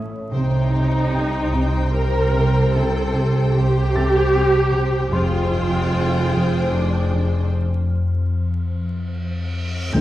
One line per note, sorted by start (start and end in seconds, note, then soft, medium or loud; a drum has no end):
0.00 0.35 A1 medium
0.00 0.18 A2 soft
0.00 0.29 A4 soft
0.00 0.13 C#5 medium
0.00 0.33 C#5 soft
0.00 0.13 E5 soft
0.00 0.33 E5 soft
0.00 1.91 E5 soft
0.00 0.14 A5 soft
0.00 1.91 D#6 soft
0.32 5.13 C2 medium
0.32 5.09 C2 medium
0.32 5.09 C3 medium
0.32 0.58 C3 medium
0.32 1.89 D#4 medium
0.32 5.14 G4 soft
0.32 5.09 C5 medium
0.32 5.12 C5 medium
0.32 5.10 G5 soft
0.32 5.12 G5 medium
0.74 0.98 C3 medium
1.15 1.38 C3 soft
1.15 3.50 G5 medium
1.55 1.78 C3 medium
1.93 2.18 C4 medium
1.93 2.73 A#4 medium
2.34 2.58 C3 medium
2.74 2.99 C3 medium
2.74 3.54 A4 medium
3.15 3.38 C3 soft
3.53 3.78 C3 medium
3.53 5.13 G4 loud
3.94 4.18 C3 medium
3.94 6.30 A4 soft
3.94 6.31 A6 soft
4.34 4.58 C4 soft
4.74 4.98 C3 medium
5.12 7.49 F1 medium
5.12 7.49 F2 medium
5.12 5.38 F2 medium
5.12 9.94 F2 medium
5.12 6.70 F4 medium
5.12 7.54 F4 medium
5.12 7.49 G#4 medium
5.12 7.49 C5 medium
5.12 7.49 C5 soft
5.12 7.50 C5 medium
5.12 7.49 G5 medium
5.12 7.50 G5 medium
5.12 7.49 C6 soft
5.54 5.78 F2 soft
5.94 6.18 F2 soft
6.34 6.58 F2 medium
6.72 6.98 F3 soft
6.72 7.53 D4 medium
7.14 7.38 F2 soft
7.53 reverse cymbal soft
9.93 10.01 D2 soft
9.93 10.01 D2 medium
9.93 10.01 D3 medium
9.93 10.01 G5 soft
9.93 10.01 G6 soft
9.93 impact soft